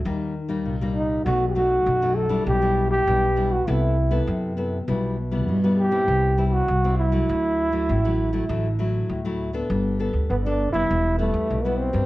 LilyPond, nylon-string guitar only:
\new Staff \with { instrumentName = "Nylon-string guitar" } { \time 4/4 \key g \major \tempo 4 = 100 << { <g bes ees'>8 r16 <g bes ees'>8 <g bes ees'>8. <fis a dis'>16 r16 <fis a dis'>8. <fis a dis'>8 <g d' e'>16~ | <g d' e'>16 <g d' e'>8. <g d' e'>16 r16 <g d' e'>16 r16 <b e' a'>8 r16 <b e' a'>8. <b e' a'>16 r16 | <g b e'>8 r16 <g b e'>8 <g b e'>8 <g c' e'>8. <g c' e'>8 r16 <g c' e'>8 <fis a e'>16~ | <fis a e'>8. <fis a e'>8 <fis a e'>8 <fis a e'>16 <fis a e'>16 r16 <fis a e'>8. <fis a e'>8 <b d' a'>16~ |
<b d' a'>8 <b d' a'>8. <b d' a'>8 <g b e'>8. <g b e'>8. <g b e'>8 <g c' d'>16 | } \\ { ees4 bes,4 b,4 fis,4 | b,4 b,4 c4 c4 | b,4 b,4 c4 g,4 | d4 a,4 d4 a,4 |
g4 d4 e4 b,4 | } >> }